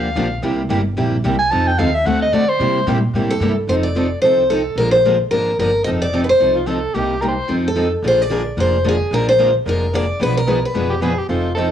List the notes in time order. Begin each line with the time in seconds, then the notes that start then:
Already playing: D2 F5
0.16 A#1 D3 F3 A#3 D4 G4
0.42 C2 C3 G3 A#3 E4 G4
0.69 G1 C3 G3 A#3 E4 G4
0.97 A#1 C3 G3 A#3 E4 G4
1.24 C2 C3 G3 A#3 E4 G4
1.39 G#5
1.51 F2 F3 C4 D#4 A4 A5
1.67 G5
1.78 D#2 F3 C4 D#4 A4 F5
1.95 E5
2.05 D2 D3 A3 C4 F#4 A4 F#5
2.22 D#5
2.32 D3 A3 C4 F#4 A4 D5
2.49 C5
2.59 C3 G3 A#3 E4 G4
2.87 A#2 C3 G3 A#3 E4 G4
3.13 A2 C3 G3 A#3 E4 G4
3.30 A4
3.40 G2 C3 G3 A#3 E4 G4
3.67 F1 F3 C4 D#4 A4 C5
3.83 D5
3.95 F3 C4 D#4 A4
4.22 C2 F3 C4 D#4 A4 C5
4.50 F3 C4 D#4 A4
4.76 A#1 D3 F3 G#3 A#3 F4 A#4
4.80 D4 G#4
4.91 C5
5.05 D3 F3 G#3 A#3 D4 F4 G#4 A#4
5.31 G#1 D3 F3 G#3 A#3 D4 F4 G#4 A#4
5.59 G1 D3 F3 G#3 A#3 D4 F4 G#4 A#4
5.84 F1 F3 C4 D#4 A4 D#5
6.02 D5
6.13 F3 C4 D#4 A4
6.24 B4
6.29 C5
6.40 C2 F3 C4 D#4 A4
6.55 F4
6.66 F3 C4 D#4 A4
6.94 C2 C3 G3 A#3 D#4 G4
7.21 C3 G3 A#3 D#4 G4 A#4
7.28 C5
7.48 F2 F3 C4 D#4 A4
7.68 A4
7.75 F3 C4 D#4 A4
8.02 A#1 D3 F3 G#3 A#3 D4 F4 G#4 A#4
8.08 C5
8.22 D5
8.30 D3 F3 G#3 A#3 D4 F4 G#4 A#4
8.57 F1 D3 F3 G#3 A#3 D4 F4 G#4 A#4 C5
8.84 D3 F3 G#3 A#3 D4 F4 G#4 A#4
8.88 G#4
9.11 A#1 D3 F3 G#3 A#3 D4 F4 G#4 A#4
9.29 C5
9.39 D3 F3 G#3 A#3 D4 F4 G#4 A#4
9.65 F1 D3 F3 G#3 A#3 D4 F4 G#4 A#4
9.93 D3 F3 G#3 A#3 D4 F4 G#4 A#4 D5
10.20 B1 B2 F3 B3 D4 G#4 B4
10.37 A#4
10.47 B2 F3 B3 D4 G#4 B4
10.65 B4
10.75 F1 B2 F3 B3 D4 G#4 B4
10.90 G4
11.02 B2 F3 B3 D4 G#4 B4
11.18 G4
11.29 F1 F3 C4 D#4 F4 A4
11.55 F3 C4 D#4 A4